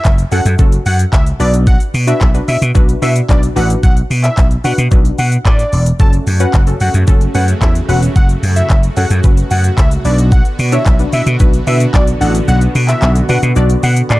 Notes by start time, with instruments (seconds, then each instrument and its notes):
Already playing: analog synth lead E5, downlifter
0.05 slap bass F#1, kick, clap, shaker
0.18 closed hi-hat, shaker
0.32 slap bass F#2, synth pluck C#4 F#4 A4, analog synth lead F#5, open hi-hat, shaker
0.45 slap bass F#2, closed hi-hat, shaker
0.59 slap bass F#1, synth pluck C#4 F#4 A4, kick, shaker
0.72 closed hi-hat, shaker
0.86 slap bass F#2, analog synth lead F#5, open hi-hat, shaker
0.99 closed hi-hat, shaker
1.13 slap bass C#2, analog synth lead E5, kick, clap, shaker
1.26 closed hi-hat, shaker
1.40 slap bass B1, synth pluck D4 F#4 B4, analog synth lead D5, open hi-hat, shaker
1.54 closed hi-hat, shaker
1.67 analog synth lead F#5, kick, shaker
1.80 closed hi-hat, shaker
1.94 slap bass B2, open hi-hat, shaker
2.07 synth pluck D4 F#4 B4, analog synth lead E5, closed hi-hat, shaker
2.21 slap bass B1, kick, clap, shaker
2.34 synth pluck D4 F#4 B4, closed hi-hat, shaker
2.48 slap bass B2, analog synth lead E5, open hi-hat, shaker
2.62 slap bass B2, closed hi-hat, shaker
2.75 slap bass B1, synth pluck D4 F#4 B4, kick, shaker
2.89 closed hi-hat, shaker
3.02 slap bass B2, synth pluck D4 F#4 B4, analog synth lead E5, open hi-hat, shaker
3.16 closed hi-hat, shaker
3.29 slap bass B1, synth pluck D4 F#4 B4, analog synth lead D5, kick, clap, shaker
3.43 closed hi-hat, shaker
3.56 slap bass A1, synth pluck D4 F#4 B4, analog synth lead F#5, open hi-hat, shaker
3.70 closed hi-hat, shaker
3.83 slap bass B1, analog synth lead F#5, kick, shaker
3.97 closed hi-hat, shaker
4.10 slap bass B2, open hi-hat, shaker
4.24 analog synth lead E5, clap, closed hi-hat, shaker
4.37 slap bass B1, kick, clap, shaker
4.51 closed hi-hat, shaker
4.64 slap bass B2, synth pluck D4 F#4 B4, analog synth lead F#5, open hi-hat, shaker
4.78 slap bass B2, closed hi-hat, shaker
4.91 slap bass B1, synth pluck D4 F#4 B4, kick, shaker
5.05 closed hi-hat, shaker
5.18 slap bass B2, analog synth lead F#5, open hi-hat, shaker
5.32 closed hi-hat, shaker
5.45 slap bass A2, analog synth lead D5, kick, clap, shaker
5.59 closed hi-hat, shaker
5.73 slap bass E1, open hi-hat, shaker
5.86 closed hi-hat, shaker
5.99 slap bass F#1, supersaw synth C#3 A3 F#4, synth pluck C#4 F#4 A4, analog synth lead A5, kick, shaker
6.13 closed hi-hat, shaker
6.27 slap bass F#2, open hi-hat, shaker
6.40 synth pluck C#4 F#4 B4, analog synth lead F#5, closed hi-hat, shaker
6.53 slap bass F#1, kick, clap, shaker
6.67 synth pluck C#4 F#4 A4, closed hi-hat, shaker
6.80 slap bass F#2, analog synth lead F#5, open hi-hat, shaker
6.94 slap bass F#2, closed hi-hat, shaker
7.07 slap bass F#1, synth pluck C#4 F#4 A4, kick, shaker
7.21 closed hi-hat, shaker
7.35 slap bass F#2, synth pluck C#4 F#4 B4, analog synth lead F#5, open hi-hat, shaker
7.48 closed hi-hat, shaker
7.61 slap bass E2, synth pluck C#4 F#4 A4, analog synth lead E5, kick, clap, shaker
7.75 closed hi-hat, shaker
7.89 slap bass E1, synth pluck C#4 F#4 B4, analog synth lead F#5, open hi-hat, shaker
8.03 closed hi-hat, shaker
8.16 slap bass F#1, analog synth lead F#5, kick, shaker
8.29 closed hi-hat, shaker
8.43 slap bass F#2, open hi-hat, shaker
8.56 analog synth lead E5, closed hi-hat, shaker
8.70 slap bass F#1, kick, clap, shaker
8.83 closed hi-hat, shaker
8.97 slap bass F#2, synth pluck C#4 F#4 A4, analog synth lead F#5, open hi-hat, shaker
9.10 slap bass F#2, closed hi-hat, shaker
9.24 slap bass F#1, synth pluck C#4 F#4 B4, kick, shaker
9.37 closed hi-hat, shaker
9.51 slap bass F#2, analog synth lead F#5, open hi-hat, shaker
9.64 closed hi-hat, shaker
9.78 slap bass C#2, analog synth lead E5, kick, clap, shaker
9.91 closed hi-hat, shaker
10.05 slap bass B1, supersaw synth D3 B3, synth pluck D4 F#4 B4, analog synth lead D5, open hi-hat, shaker
10.18 closed hi-hat, shaker
10.32 analog synth lead F#5, kick, shaker
10.45 closed hi-hat, shaker
10.59 slap bass B2, open hi-hat, shaker
10.72 synth pluck D4 F#4 C#5, analog synth lead E5, closed hi-hat, shaker
10.86 slap bass B1, kick, clap, shaker
10.99 synth pluck D4 F#4 B4, closed hi-hat, shaker
11.13 slap bass B2, analog synth lead E5, open hi-hat, shaker
11.26 slap bass B2, closed hi-hat, shaker
11.40 slap bass B1, synth pluck D4 F#4 B4, kick, shaker
11.53 closed hi-hat, shaker
11.67 slap bass B2, synth pluck D4 F#4 B4, analog synth lead E5, open hi-hat, shaker
11.80 closed hi-hat, shaker
11.94 slap bass B1, synth pluck D4 F#4 D5, analog synth lead D5, kick, clap, shaker
12.07 closed hi-hat, shaker
12.21 slap bass A1, synth pluck D4 F#4 A4, analog synth lead F#5, open hi-hat, shaker
12.35 closed hi-hat, shaker
12.48 slap bass B1, analog synth lead F#5, shaker
12.61 closed hi-hat, shaker
12.75 slap bass B2, open hi-hat, shaker
12.88 analog synth lead E5, clap, closed hi-hat, shaker
13.02 slap bass B1, clap, shaker
13.15 closed hi-hat, shaker
13.29 slap bass B2, synth pluck D4 F#4 B4, analog synth lead F#5, open hi-hat, shaker
13.43 slap bass B2, closed hi-hat, shaker
13.56 slap bass B1, synth pluck D4 F#4 D5, shaker
13.70 closed hi-hat, shaker
13.83 slap bass B2, analog synth lead F#5, open hi-hat, shaker
13.96 closed hi-hat, shaker
14.10 slap bass A2, analog synth lead D5, clap, shaker